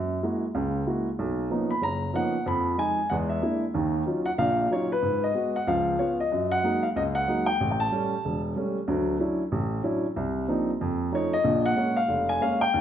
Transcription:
grand piano
Already playing: F#2
0.23 G#3 A#3 E4 F#4
0.55 C#2 C#3
0.86 G#3 A#3 E4 F#4
1.19 B1
1.50 F3 A#3 B3 C#4 D#4
1.71 B5
1.82 F#1 A#5
2.13 F3 A#3 B3 C#4 D#4 F#5
2.46 F2 F3 B5
2.77 F3 G#3 D#4 G#5
3.10 E2 G#3 F#5
3.29 E5
3.42 G#3 A#3 D4 E4
3.74 D#2 D#3
4.06 F#3 C#4 D#4 F4
4.26 F#5
4.38 A#1 A#2 F5
4.70 F#3 C#4 D#4 F4 C#5
4.92 B4
5.02 G#2
5.24 D#5
5.34 G#3 B3 F#4
5.56 F#5
5.67 C#2 F3 F5
5.99 B3 C#4 F4 C#5
6.20 D#5
6.32 F#2
6.52 F#5
6.63 F#3 G#3 A#3 D#4
6.83 F5
6.96 C#2 D#5
7.15 F#5
7.27 F#3 G#3 A#3 D#4
7.46 G5
7.61 A1
7.71 G5
7.80 A5
7.92 G3 A3 C#4
8.25 E1
8.56 G3 A3 C#4
8.88 D2 F#3
9.19 F#3 C#4 D4 E4
9.52 A1
9.83 F#3 C#4 D4 E4
10.16 C2
10.48 F3 A#3 C4 D4 D#4
10.81 F2
11.12 F3 A3 C#4 D#4 C#5
11.33 D#5
11.44 A#1 A#2
11.66 F#5
11.76 G#3 A#3 C#4
11.96 F5
12.08 F1
12.29 G#5
12.41 G#3 A#3 C#4 F5
12.61 G5
12.74 D#2

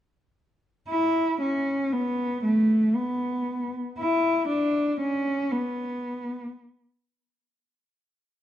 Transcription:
cello
0.88 E4
1.41 C#4
1.92 B3
2.44 A3
2.95 B3
3.99 E4
4.48 D4
5.00 C#4
5.51 B3

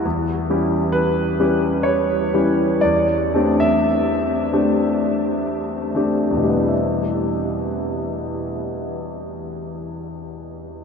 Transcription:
grand piano
0.05 E2
0.50 G3 C#4 E4 G4
0.92 B4
1.40 G3 C#4 E4 G4
1.83 C#5
2.34 G3 C#4 E4 G4
2.81 E2 D5
3.34 A3 C4 D4 G4
3.60 E5
4.53 A3 C4 D4 G4
5.95 A3 C4 D4 G4
6.31 E2
6.37 B2
6.44 G3
6.50 B3
6.57 E4
6.63 G4
6.68 E5

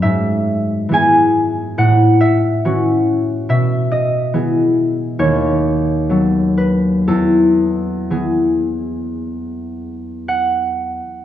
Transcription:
harp
0.02 G#2 E5
0.89 E3 B3 G#4
0.94 G#5
1.78 A2 F#5
2.21 E5
2.65 E3 C#4 F#4
3.49 B2 E5
3.92 D#5
4.34 E3 B3 G#4
5.19 D#2 C#5
6.09 F#3 B3 A4
6.58 B4
7.08 E2 A4
8.10 E3 B3 G#4
10.28 F#5

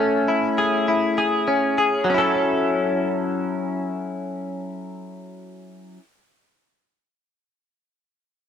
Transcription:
clean electric guitar
Already playing: A3 C#4 E4 A4
0.28 E4
0.58 G#4
0.88 E4
1.18 G#4
1.48 C#4
1.78 G#4
2.04 F#3
2.10 C#4
2.14 E4 A4

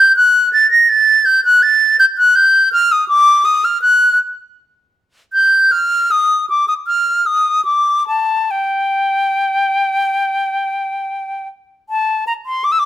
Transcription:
flute
Already playing: G6
0.16 F#6
0.53 A6
0.71 A#6
0.89 A6
1.25 G6
1.45 F#6
1.63 A6
1.99 G6
2.18 F#6
2.35 G6
2.73 F6
2.92 D#6
3.08 D6
3.45 D#6
3.64 F6
3.82 F#6
5.33 G6
5.72 F6
6.11 D#6
6.50 D6
6.68 D#6
6.87 F6
7.26 D#6
7.65 D6
8.08 A5
8.51 G5
11.89 A5
12.27 A#5
12.46 C6
12.64 D6
12.72 E6
12.79 D6

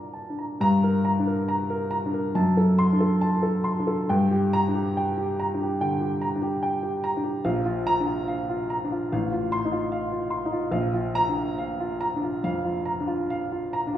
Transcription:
grand piano
Already playing: D3 D4 A#4 D5 A5 A#5
0.13 A5
0.30 D4
0.39 A#5
0.61 G2 A#5
0.84 A#4
1.05 A#5
1.19 D4
1.27 A#4
1.48 A#5
1.70 A#4
1.91 A#5
2.06 D4
2.14 A#4
2.35 F#2 A5
2.57 A4
2.78 C6
2.93 D4
3.00 A4
3.21 A5
3.43 A4
3.64 C6
3.79 D4
3.87 A4
4.09 G2 G5
4.31 G4
4.53 A#5
4.68 D4
4.75 G4
4.97 G5
5.18 G4
5.40 A#5
5.54 D4
5.62 G4
5.81 D3 G5
6.01 G4
6.22 A#5
6.36 D4
6.42 G4
6.63 G5
6.83 G4
7.04 A#5
7.17 D4
7.24 G4
7.45 A#1 F5
7.65 F4
7.87 A#5
8.00 D4
8.07 F4
8.28 F5
8.49 F4
8.70 A#5
8.84 D4
8.92 F4
9.12 A1 F5
9.32 F4
9.52 C6
9.65 D#4
9.72 F4
9.92 F5
10.12 F4
10.30 C6
10.45 D#4
10.52 F4
10.71 A#1 F5
10.94 F4
11.15 A#5
11.29 D4
11.37 F4
11.58 F5
11.80 F4
12.01 A#5
12.16 D4
12.24 F4
12.44 F2 F5
12.64 F4
12.86 A#5
13.00 D4
13.07 F4
13.30 F5
13.52 F4
13.73 A#5
13.87 D4
13.94 F4

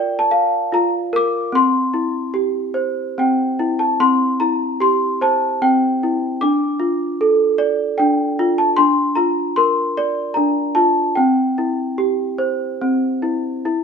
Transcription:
celesta
Already playing: F4 A#4 D5 G5
0.19 A5
0.31 F5
0.72 F4 A#5
1.13 A#4 D6
1.52 C4 C6
1.94 E4
2.34 G4
2.74 C5
3.18 C4 G5
3.59 E4
3.79 A5
4.00 C4 C6
4.40 E4 A#5
4.80 G4 C6
5.21 C5 A5
5.62 C4 G5
6.03 E4
6.41 D4 D6
6.80 F4
7.21 A4
7.58 D5
7.98 D4 G5
8.39 F4
8.58 A5
8.76 D4 C6
9.15 F4 A#5
9.56 A#4 C6
9.97 D5
10.34 D4 A#5
10.75 F4 A5
11.15 C4 G5
11.58 E4
11.98 G4
12.38 C5
12.81 C4
13.22 E4
13.65 E4

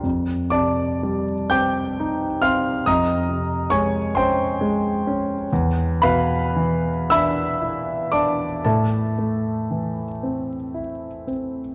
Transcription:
grand piano
0.03 F2
0.50 C3 D5 A5 D6
1.03 G3
1.50 C4 G5 D6 G6
2.00 D#4
2.41 C4 F5 C6 F6
2.86 F2 D#5 A#5 D#6
3.29 C3
3.70 G#3 C#5 G#5 C#6
4.15 C#4 C5 G5 C6
4.61 G#3
5.07 C#4
5.53 E2
6.02 B2 B4 F5 B5
6.56 E3
7.10 D4 E5 B5 E6
7.61 E4
8.12 D4 D5 A5 D6
8.65 A2 A4 E5 A5
9.18 A3
9.71 E3
10.23 C4
10.74 E4
11.27 C4

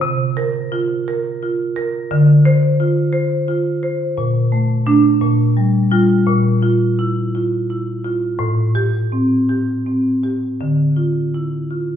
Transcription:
marimba
0.01 C3
0.37 A#4
0.72 F4
1.08 A#4
1.43 F4
1.76 A#4
2.11 D3
2.45 C5
2.80 F4
3.13 C5
3.48 F4
3.83 C5
4.18 A#2
4.52 A3
4.86 A3 D4
5.21 A#2
5.57 G3
5.91 G3 F4
6.26 A#2
6.63 F4
6.99 E4
7.35 F4
7.70 E4
8.04 F4
8.39 A2
8.75 G4
9.12 C4
9.49 G4
9.86 C4
10.23 G4
10.61 D3
10.96 F4
11.34 E4
11.71 F4

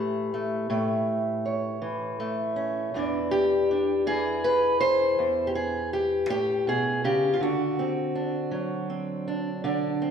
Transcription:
steel-string acoustic guitar
Already playing: A2 E3 A3 G4
0.34 A3
0.70 A2 A3
1.45 C#5
1.82 E3
2.20 A3
2.56 C#4
2.94 E2 E3 D4 D5
3.31 G4
3.71 D4
4.06 E3 G#4
4.44 B4
4.81 C5
5.19 E2
5.47 G4
5.55 G#4
5.93 G4
6.29 A2 G4
6.67 B2 G#4
7.04 C#3 G4
7.33 F4
7.40 D3 F#4
7.79 C4
8.15 D4
8.51 F#3
8.90 C4
9.28 D4
9.64 D3 D4
10.02 C4

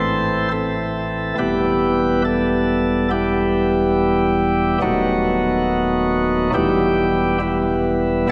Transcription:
pipe organ
Already playing: A1 A2 E3 A3 C4 E4 A4 C5
0.51 C4 E4 A4
1.38 E1 E2 E3 G3 B3 E4 G4 B4
2.25 A4
3.11 B3 E4 G4
4.82 D#1 D#2 F#3 A3 B3 D#4 F#4
6.54 E1 E2 E3 G3 B3 E4 G4
7.40 G3 B3 E4

